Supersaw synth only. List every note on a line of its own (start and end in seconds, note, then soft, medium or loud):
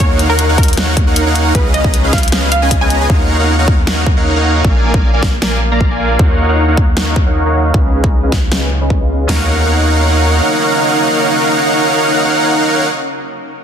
0.00 0.27 D#4 loud
0.00 0.27 A#4 medium
0.00 0.27 C#5 medium
0.00 0.27 F5 medium
0.00 0.27 F#5 loud
0.30 0.45 D#4 loud
0.30 0.45 A#4 medium
0.30 0.45 C#5 medium
0.30 0.45 F5 medium
0.30 0.45 F#5 loud
0.49 0.64 D#4 medium
0.49 0.64 A#4 medium
0.49 0.64 C#5 medium
0.49 0.64 F5 medium
0.49 0.64 F#5 loud
0.78 0.95 D#4 medium
0.78 0.95 A#4 medium
0.78 0.95 C#5 medium
0.78 0.95 F5 medium
0.78 0.95 F#5 loud
1.07 1.24 D#4 medium
1.07 1.24 A#4 medium
1.07 1.24 C#5 medium
1.07 1.24 F5 medium
1.07 1.24 F#5 medium
1.26 1.53 D#4 medium
1.26 1.53 A#4 medium
1.26 1.53 C#5 medium
1.26 1.53 F5 medium
1.26 1.53 F#5 loud
1.55 1.82 C#4 loud
1.55 1.82 G#4 medium
1.55 1.82 B4 medium
1.55 1.82 D#5 medium
1.55 1.82 F5 loud
1.85 2.00 C#4 medium
1.85 2.00 G#4 medium
1.85 2.00 B4 medium
1.85 2.00 D#5 medium
1.85 2.00 A#5 loud
2.04 2.19 C#4 medium
2.04 2.19 G#4 medium
2.04 2.19 B4 medium
2.04 2.19 D#5 medium
2.04 2.19 F5 loud
2.32 2.50 C#4 medium
2.32 2.50 G#4 medium
2.32 2.50 B4 medium
2.32 2.50 D#5 medium
2.32 2.50 F5 medium
2.62 2.77 C#4 medium
2.62 2.77 G#4 medium
2.62 2.77 B4 medium
2.62 2.77 D#5 medium
2.62 2.77 G#5 medium
2.81 2.98 C#4 medium
2.81 2.98 G#4 medium
2.81 2.98 B4 medium
2.81 2.98 D#5 medium
2.81 2.98 A#5 medium
3.01 3.08 C#4 medium
3.01 3.08 G#4 medium
3.01 3.08 B4 medium
3.01 3.08 D#5 medium
3.01 3.08 G#5 medium
3.10 3.37 D#4 medium
3.10 3.37 A#4 medium
3.10 3.37 C#5 medium
3.10 3.37 F5 medium
3.10 3.37 F#5 loud
3.39 3.55 D#4 medium
3.39 3.55 A#4 medium
3.39 3.55 C#5 medium
3.39 3.55 F5 medium
3.39 3.55 F#5 loud
3.59 3.74 D#4 medium
3.59 3.74 A#4 medium
3.59 3.74 C#5 medium
3.59 3.74 F5 medium
3.59 3.74 F#5 loud
3.87 4.04 D#4 medium
3.87 4.04 A#4 medium
3.87 4.04 C#5 medium
3.87 4.04 F5 medium
3.87 4.04 F#5 medium
4.17 4.34 D#4 medium
4.17 4.34 A#4 medium
4.17 4.34 C#5 medium
4.17 4.34 F5 medium
4.17 4.34 F#5 medium
4.36 4.62 D#4 medium
4.36 4.62 A#4 medium
4.36 4.62 C#5 medium
4.36 4.62 F5 medium
4.36 4.62 F#5 medium
4.65 4.92 A#3 medium
4.65 4.92 A#4 medium
4.65 4.92 D5 medium
4.65 4.92 F5 medium
4.65 4.92 G#5 loud
4.94 5.09 A#3 medium
4.94 5.09 A#4 medium
4.94 5.10 D5 medium
4.94 5.10 F5 medium
4.94 5.10 G#5 loud
5.13 5.29 A#3 medium
5.13 5.29 A#4 medium
5.13 5.29 D5 medium
5.13 5.29 F5 medium
5.13 5.29 G#5 loud
5.42 5.59 A#3 medium
5.42 5.59 A#4 medium
5.42 5.59 D5 medium
5.42 5.59 F5 medium
5.42 5.59 G#5 medium
5.71 5.88 A#3 medium
5.71 5.88 A#4 medium
5.71 5.88 D5 medium
5.71 5.88 F5 medium
5.71 5.88 A#5 medium
5.91 6.17 A#3 medium
5.91 6.17 A#4 medium
5.91 6.17 D5 medium
5.91 6.17 F5 medium
5.91 6.17 G#5 medium
6.19 6.46 D#4 medium
6.19 6.46 A#4 medium
6.19 6.46 C#5 medium
6.19 6.46 F5 medium
6.19 6.46 F#5 loud
6.49 6.64 D#4 medium
6.49 6.64 A#4 medium
6.49 6.64 C#5 medium
6.49 6.64 F5 medium
6.49 6.64 F#5 loud
6.68 6.84 D#4 medium
6.68 6.84 A#4 medium
6.68 6.84 C#5 medium
6.68 6.84 F5 medium
6.68 6.84 F#5 loud
6.97 7.14 D#4 medium
6.97 7.14 A#4 medium
6.97 7.14 C#5 medium
6.97 7.14 F5 medium
6.97 7.14 F#5 medium
7.26 7.43 D#4 medium
7.26 7.43 A#4 medium
7.26 7.43 C#5 medium
7.26 7.43 F5 medium
7.26 7.43 F#5 medium
7.46 7.72 D#4 medium
7.46 7.72 A#4 medium
7.46 7.72 C#5 medium
7.46 7.72 F5 medium
7.46 7.72 F#5 medium
7.74 8.01 C#4 loud
7.74 8.01 G#4 medium
7.74 8.01 B4 medium
7.74 8.01 D#5 medium
7.74 8.01 F5 loud
8.04 8.19 C#4 medium
8.04 8.19 G#4 medium
8.04 8.19 B4 medium
8.04 8.19 D#5 medium
8.04 8.19 A#5 loud
8.23 8.39 C#4 medium
8.23 8.39 G#4 medium
8.23 8.39 B4 medium
8.23 8.39 D#5 medium
8.23 8.39 F5 loud
8.52 8.69 C#4 medium
8.52 8.69 G#4 medium
8.52 8.69 B4 medium
8.52 8.69 D#5 medium
8.52 8.69 F5 medium
8.81 8.98 C#4 medium
8.81 8.98 G#4 medium
8.81 8.98 B4 medium
8.81 8.98 D#5 medium
8.81 8.98 G#5 medium
9.00 9.27 C#4 medium
9.00 9.27 G#4 medium
9.00 9.27 B4 medium
9.00 9.27 D#5 medium
9.00 9.27 F5 medium
9.29 12.86 D#4 medium
9.29 12.86 A#4 medium
9.29 12.86 C#5 medium
9.29 12.86 F5 medium
9.29 12.86 F#5 medium